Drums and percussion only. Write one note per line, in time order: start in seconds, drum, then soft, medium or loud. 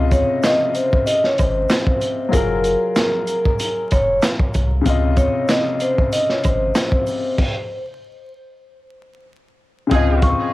0.11 kick loud
0.11 closed hi-hat medium
0.11 shaker medium
0.43 snare loud
0.43 clap loud
0.43 closed hi-hat medium
0.43 shaker medium
0.75 closed hi-hat medium
0.75 shaker medium
0.93 kick medium
1.07 closed hi-hat loud
1.07 shaker medium
1.24 snare soft
1.38 kick medium
1.38 closed hi-hat medium
1.38 high woodblock medium
1.38 shaker soft
1.69 snare loud
1.69 clap medium
1.69 closed hi-hat medium
1.69 shaker medium
1.87 kick loud
2.01 closed hi-hat medium
2.01 shaker medium
2.33 kick loud
2.33 closed hi-hat loud
2.33 shaker medium
2.64 closed hi-hat medium
2.64 shaker medium
2.96 snare loud
2.96 clap medium
2.96 closed hi-hat medium
2.96 shaker medium
3.27 closed hi-hat medium
3.27 shaker medium
3.46 kick medium
3.60 closed hi-hat loud
3.60 shaker medium
3.91 kick medium
3.91 closed hi-hat medium
3.91 high woodblock medium
3.91 shaker soft
4.22 snare loud
4.22 clap medium
4.22 closed hi-hat medium
4.22 shaker medium
4.39 kick loud
4.54 kick medium
4.54 closed hi-hat medium
4.54 shaker medium
4.86 kick loud
4.86 closed hi-hat loud
4.86 shaker medium
5.17 kick loud
5.17 closed hi-hat medium
5.17 shaker medium
5.48 snare loud
5.48 clap medium
5.48 closed hi-hat medium
5.48 shaker medium
5.80 closed hi-hat medium
5.80 shaker medium
5.98 kick medium
6.12 closed hi-hat loud
6.12 shaker medium
6.29 snare soft
6.43 kick medium
6.43 closed hi-hat medium
6.43 high woodblock medium
6.43 shaker soft
6.75 snare loud
6.75 clap medium
6.75 closed hi-hat medium
6.75 shaker medium
6.92 kick loud
7.07 open hi-hat medium
7.07 shaker medium
7.38 kick loud
7.38 crash medium
9.91 kick loud
9.91 closed hi-hat loud
10.22 kick loud
10.22 closed hi-hat medium